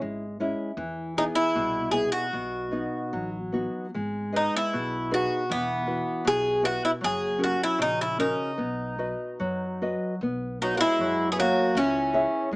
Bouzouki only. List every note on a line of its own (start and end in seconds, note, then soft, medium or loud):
1.18 1.23 D#4 medium
1.35 1.90 E4 medium
1.91 2.12 G#4 medium
2.12 3.29 F#4 medium
4.36 4.56 D#4 medium
4.56 5.13 E4 medium
5.14 5.49 F#4 medium
5.51 6.29 B3 medium
6.27 6.62 G#4 loud
6.65 6.84 F#4 medium
6.85 6.90 E4 medium
7.04 7.43 G#4 medium
7.44 7.62 F#4 medium
7.63 7.81 E4 medium
7.82 8.01 D#4 medium
8.01 8.19 E4 medium
8.20 9.78 D#4 medium
10.62 10.74 D#4 medium
10.77 11.28 E4 medium
10.77 10.80 F#4 medium
11.32 11.38 G#4 medium
11.40 11.78 F#4 medium
11.77 12.48 C#4 medium